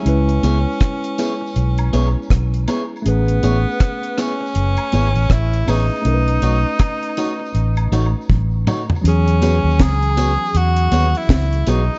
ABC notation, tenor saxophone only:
X:1
M:4/4
L:1/16
Q:"Swing 16ths" 1/4=80
K:E
V:1 name="Tenor saxophone"
C12- C2 z2 | B,6 C6 E2 D2- | D12 z4 | C4 G4 F3 E3 D2 |]